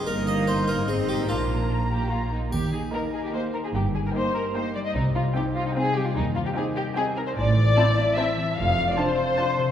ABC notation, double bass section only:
X:1
M:3/4
L:1/8
Q:1/4=149
K:Eb
V:1 name="Double bass section" clef=bass
G,,,4 A,,,2 | B,,,4- B,,, z | E,,2 z4 | G,,,2 z4 |
C,,2 z4 | E,,2 z4 | [K:Am] A,,,2 z4 | F,,,2 z4 |]